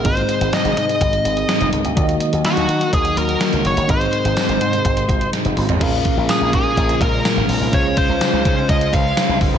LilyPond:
<<
  \new Staff \with { instrumentName = "Lead electric guitar" } { \time 4/4 \key aes \mixolydian \tempo 4 = 125 c''4 ees''8 ees''2 r8 | r4 ges'4 aes'8 bes'4 des''8 | c''2. r4 | r4 aes'8 aes'4 bes'4. |
des''8 c''4. ees''8 f''4 r8 | }
  \new Staff \with { instrumentName = "Tine electric piano" } { \time 4/4 \key aes \mixolydian <c' ees' aes' ees''>2~ <c' ees' aes' ees''>8 <c' ees' aes' ees''>4. | <bes ees' ges' d'' ees''>1 | <c' ees' aes' ees''>1 | <des' f' aes' bes' f''>1 |
<des' f' aes' c'' f''>1 | }
  \new Staff \with { instrumentName = "Tine electric piano" } { \clef bass \time 4/4 \key aes \mixolydian aes,4. r2 r8 | ees4. r2 r8 | aes,4. r2 r8 | bes,4. r2 r8 |
des4. r2 r8 | }
  \new Staff \with { instrumentName = "Analog synth pad" } { \clef bass \time 4/4 \key aes \mixolydian << { <c ees'>1 | <bes ges'>1 | <c aes ees'>1 | <des bes f'>1 |
<des f' c''>1 | } \\ { <ees aes>1 | ges1 | r1 | aes1~ |
aes1 | } >> }
  \new Staff \with { instrumentName = "Overdriven electric guitar" } { \clef bass \time 4/4 \key aes \mixolydian r1 | r1 | r1 | <bes, f bes>4. <f bes>8 <bes, f bes>2 |
<des aes des'>4. <aes des'>8 <des aes des'>2 | }
  \new Staff \with { instrumentName = "Slap bass" } { \clef bass \time 4/4 \key aes \mixolydian aes,,8 r16 aes,,16 r16 aes,,16 aes,8 aes,,8 aes,,8 r16 f,,16 des,16 d,16 | ees,8 r16 ees,16 r16 ees,16 ees8 ees,8 ees,8 r16 des,16 ges,,16 g,,16 | aes,,8 r16 aes,,16 r16 aes,,16 aes,8 aes,,8 aes,,8 r16 f,,16 aes,,16 a,,16 | bes,,8 r16 bes,,16 r16 bes,,16 bes,8 bes,,8 bes,,8 r16 aes,,16 ces,16 c,16 |
des,8 r16 des,16 r16 des,16 des8 des,8 des,8 r16 c,16 ges,,16 g,,16 | }
  \new DrumStaff \with { instrumentName = "Drums" } \drummode { \time 4/4 <hh bd>16 hh16 hh16 hh16 <hh sn>16 hh16 hh16 hh16 <hh bd>16 hh16 hh16 hh16 <hh sn>16 hh16 hh16 hh16 | <hh bd>16 hh16 hh16 hh16 <hh sn>16 hh16 hh16 hh16 <hh bd>16 hh16 hh16 hh16 <hh sn>16 hh16 hh16 hh16 | <hh bd>16 hh16 hh16 hh16 <hh sn tamb>16 hh16 hh16 hh16 <hh bd>16 hh16 <hh bd>16 hh16 <hh sn>16 hh16 <hho toml>16 <hh tomfh>16 | <cymc hh bd>8 <hh bd>8 <hh sn tamb>8 <hh bd>8 <hh bd>16 hh16 <hh bd>8 <hh sn tamb>8 hho8 |
<hh bd>8 <hh bd>8 <hh sn tamb>8 <hh bd>8 <hh bd>16 hh16 <hh bd>8 <hh sn tamb>8 <hho bd>8 | }
>>